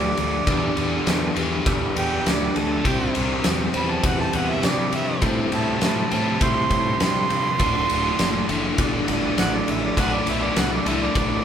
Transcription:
Already playing: D2 G2 D3 G3 B3 D4 G4 B4 D5
0.17 D2, ride
0.47 E2 G2 D3 B3 D4 G4 A4, kick, ride
0.51 G3
0.77 E2, ride
1.07 E2, snare, ride
1.36 E2 D3 G3, ride
1.40 G2
1.66 E2 B3 D4 G4 B4, kick, ride
1.96 E2 G5, ride
2.26 D2 D5, snare, ride
2.56 D2 A4, ride
2.84 C2 C3 G3 C4 E4 G4 C5, kick, ride
2.88 C4
3.15 C2, ride
3.44 E2, snare, ride
3.74 E2 G3 C4 B5, ride
3.78 C3
3.91 A5
4.04 E2 C4 E4 G4 C5 F#5, kick, ride
4.20 A5
4.33 E2 F#5, ride
4.50 E5
4.63 G2 D5, snare, ride
4.93 G2 E5, ride
5.22 A2 C3 G3 C4 E4 G4 A4, kick, ride
5.26 C4
5.52 A2 A5, ride
5.81 A2 A5, snare, ride
6.11 A2 C3 G3 C4 A5, ride
6.41 A2 C4 E4 G4 C5 C6, kick, ride
6.70 A2, kick, ride
7.00 G2 C6, snare, ride
7.30 G2, ride
7.59 D1 D2 A2 D4 F#4 A4 D5, kick, ride
7.63 D3
7.89 D1, ride
8.19 F#1, snare, ride
8.49 F#1 D2 A2 D3, ride
8.78 G1 D4 F#4 A4 D5, kick, ride
9.08 G1, ride
9.38 A1 F#5, snare, ride
9.55 D5
9.68 A1 E5, ride
9.85 D5
9.96 B1 D2 A2 D3 D4 F#4 A4 D5 F#5, kick, ride
10.14 D5
10.27 B1 E5, ride
10.44 D5
10.56 C2 F#5, snare, ride
10.72 D5
10.86 C2 A2 D3 E5, ride
10.90 D2
11.02 D5
11.15 B1 D4 F#4 A4 D5, kick, ride

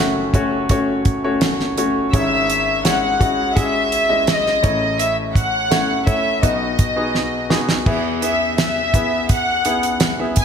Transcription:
Already playing: F#1 F#2 A3 C#4 F#4 C#5 E5
0.34 A3 C#4 F#4 C#5, kick, closed hi-hat
0.69 A3 C#4 F#4 C#5, kick, closed hi-hat
1.05 kick, closed hi-hat
1.24 A3 C#4 F#4 C#5
1.41 snare, closed hi-hat
1.60 snare
1.78 A3 C#4 F#4 C#5, closed hi-hat
2.13 G#1 G#2 G#3 C#4 E4 C#5 E5, kick, closed hi-hat
2.50 closed hi-hat
2.85 G#3 C#4 E4 C#5 F#5, snare, closed hi-hat
3.20 G#3 C#4 E4 F#4, kick, closed hi-hat
3.56 G#3 C#4 E4 G#4 E5, kick, closed hi-hat
3.92 closed hi-hat
4.09 G#3 C#4 E4 D#5
4.27 D#5, snare, closed hi-hat
4.46 snare
4.63 A1 A2 A3 C#4 E4 C#5, kick, closed hi-hat
5.00 E5, closed hi-hat
5.35 F#5, kick, closed hi-hat
5.71 A3 C#4 E4 C#5, snare, closed hi-hat
6.06 A3 C#4 E4 C#5 E5, kick, closed hi-hat
6.42 B1 B2 B3 D#4 F#4 D#5, kick, closed hi-hat
6.79 kick, closed hi-hat
6.96 B3 D#4 F#4 G#4
7.15 snare
7.50 B3 D#4 F#4 G#4, snare
7.69 snare
7.86 E2 E3 B3 E4 G#4 E5, kick, crash
8.22 B3 E4 G#4 E5, closed hi-hat
8.57 E5, snare, closed hi-hat
8.94 B3 E4 G#4 E5, kick, closed hi-hat
9.29 F#5, kick, closed hi-hat
9.65 B3 E4 G#4 F#5, closed hi-hat
9.83 closed hi-hat
10.00 snare, closed hi-hat
10.19 B3 E4 G#4 E5
10.36 G#5, kick, closed hi-hat

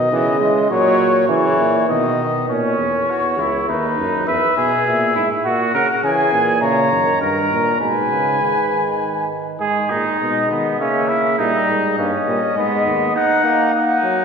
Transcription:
Already playing: B2 D#3 D#5
0.12 C#3 E3
0.40 G#3
0.71 A#2 F#3 C#5
1.29 C#3 E3 C#5
1.59 A#2
1.88 B2 D#3 D#5
2.49 A#2 C#4 C#5
2.79 E2
3.10 F#4
3.38 C#2 E4
3.68 D#2 D#4 B4
3.98 F#2
4.27 E2 B4 E5
4.57 B2 G#4
4.86 A#2 E5
5.16 G#2 E4
5.45 A#2 F#4 F#5
5.74 C#3 A#4
6.04 C#3 E3 G#4 G#5
6.33 A#2
6.62 C#3 C#5 A#5
6.92 F#2 D#3
7.21 G2 A#4 A#5
7.51 A#2
7.80 G#2 B2 B4 G#5
8.10 C#3
8.41 D#3
8.71 D#3
9.60 G#2 G#3 G#4 D#5
9.90 A#2 D#4
10.20 B2 G#3
10.50 D#3 B3
10.79 C#3 A#3 C#4 E5
11.08 E4
11.39 A#2 G3 D#4 D#5
11.68 G#2
11.97 G2 A#3 C#4 D#5
12.27 A#2 G3
12.56 G#2 G#3 B3
12.86 D#2
13.15 D#4 F#5
13.44 A#3
13.74 D#4 F#5
14.03 F#3

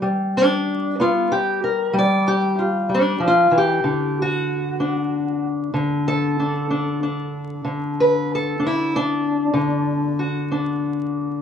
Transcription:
0.02 G3
0.37 D4
1.00 B3 F4
1.32 G4
1.64 A#4
1.94 G3
1.99 D5
2.28 G4
2.59 F4
2.89 G3
2.94 D4
3.20 F3
3.28 F4
3.51 E3
3.58 G4
3.84 D3
4.22 F#4
4.80 D4
5.74 D3
6.08 A4
6.40 D4
6.71 D4
7.03 D4
7.65 D3
8.00 B4
8.35 A4
8.60 D4
8.66 E4
8.96 D4
9.54 D3
10.19 F#4
10.52 D4

